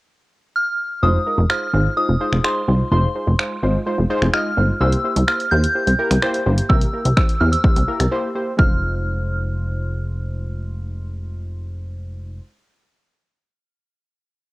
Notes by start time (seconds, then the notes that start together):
0.56 F6
1.02 F1 G#3 D#4 F4 C5 D#6
1.26 G#3 D#4 F4 A#4
1.38 F1
1.50 G#3 D#4 F4 C5 F6, finger snap
1.73 G#1 G#3 D#4 F4 C5
1.97 G#3 D#4 F4 C5 D#6
2.09 F1
2.21 G#3 D#4 F4 C5
2.33 F1, finger snap
2.44 G#3 D#4 F4 C5 C6, finger snap
2.68 C2 G#3 D#4 F4 C5
2.92 F1 G#3 D#4 F4 C5 C6
3.15 G#3 D#4 F4 C5
3.27 F1
3.39 G#3 D#4 F4 C5, finger snap
3.63 G#1 G#3 D#4 F4 C5
3.86 G#3 D#4 F4 C5
3.98 F1
4.10 G#3 D#4 F4 C5
4.22 F1, finger snap
4.33 G#3 D#4 F4 D#5 F6, finger snap
4.57 G1 G#3 D#4 F4 C5
4.80 C2 A#3 E4 G4 C5 E6
4.92 closed hi-hat
5.04 A#3 E4 G4 C5
5.16 C2, closed hi-hat
5.27 A#3 E4 G4 C5 F6, finger snap
5.40 closed hi-hat
5.51 D#2 A#3 E4 G4 C5 G6
5.64 closed hi-hat
5.75 A#3 E4 G4 C5
5.87 C2, closed hi-hat
5.99 A#3 E4 G4 A#4
6.11 C2, finger snap, closed hi-hat
6.22 A#3 E4 G4 C5, finger snap
6.34 closed hi-hat
6.46 G1 A#3 E4 G4 C5
6.58 closed hi-hat
6.69 C2 A#3 E4 G4 A#4 E6, kick
6.81 closed hi-hat
6.93 A#3 E4 G4 A#4
7.05 C2, closed hi-hat
7.17 A#3 E4 G4 C5 E6, finger snap, kick
7.29 closed hi-hat
7.40 E2 A#3 E4 G4 C5 F6
7.52 E6, closed hi-hat
7.64 A#3 E4 G4 C5, kick
7.76 C2, closed hi-hat
7.88 A#3 E4 G4 A#4
8.00 C2, finger snap, closed hi-hat
8.11 A#3 E4 G4 C5
8.35 A#3 E4 G4 C5
8.57 F1 G#3 D#4 F4 C5 F6, kick